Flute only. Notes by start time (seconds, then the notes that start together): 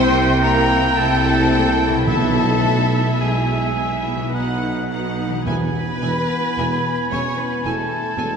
Already playing: C6
0.42 A#5
0.97 A5
2.05 A5
3.21 G#5
5.46 B5
7.13 C#6
7.40 B5
7.66 A5